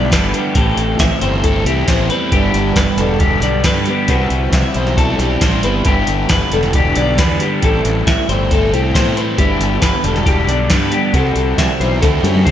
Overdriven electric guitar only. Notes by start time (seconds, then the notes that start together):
Already playing: G2 G3 B3 D4
0.11 D3 G3 B3 D4
0.33 G3 B3 D4
0.56 A2 E3 A3 C4 E4
1.21 A3 C4 E4
1.44 A2 E3 A3 C4 E4
1.66 A3 C4 E4
1.88 E3 A3 C4 E4
2.10 A3 C4 E4
2.32 G2 D3 G3 B3 D4
2.99 G3 B3 D4
3.20 G2 D3 G3 B3 D4
3.41 G3 B3 D4
3.65 D3 G3 B3 D4
3.87 G3 B3 D4
4.09 C3 G3 C4 E4
4.76 G3 C4 E4
4.97 C3 G3 C4 E4
5.20 G3 C4 E4
5.42 C3 G3 C4 E4
5.64 G3 C4 E4
5.86 G2 D3 G3 B3 D4
6.52 G3 B3 D4
6.74 G2 D3 G3 B3 D4
6.97 G3 B3 D4
7.19 D3 G3 B3 D4
7.41 G3 B3 D4
7.63 A2 E3 A3 C4 E4
8.29 A3 C4 E4
8.51 A2 E3 A3 C4 E4
8.72 A3 C4 E4
8.95 E3 A3 C4 E4
9.17 A3 C4 E4
9.38 G2 D3 G3 B3 D4
10.04 G3 B3 D4
10.25 G2 D3 G3 B3 D4
10.48 G3 B3 D4
10.70 D3 G3 B3 D4
10.91 G3 B3 D4
11.14 C3 G3 C4 E4
11.80 G3 C4 E4
12.01 D3 A3 C4 F#4
12.24 A3 C4 F#4
12.46 D3 A3